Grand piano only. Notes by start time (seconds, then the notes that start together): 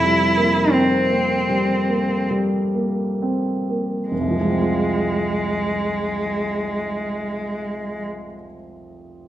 Already playing: F2 C3
0.03 G3
0.37 A#3
0.73 C4
1.10 A#3
1.49 G3
1.89 A#3
2.31 G3
2.75 A#3
3.22 C4
3.69 A#3
4.11 F1
4.21 C2
4.30 F3
4.41 G#3
4.51 C4
4.61 F4